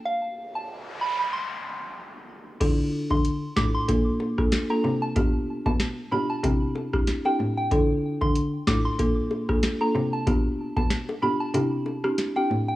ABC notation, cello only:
X:1
M:4/4
L:1/16
Q:"Swing 16ths" 1/4=94
K:Dm
V:1 name="Cello" clef=bass
z16 | D,3 D,2 z A,, z B,,4 z2 C,2 | =B,,3 B,,2 z B,, z C,4 z2 A,,2 | D,3 D,2 z A,, z B,,4 z2 C,2 |
=B,,3 B,,2 z B,, z C,4 z2 A,,2 |]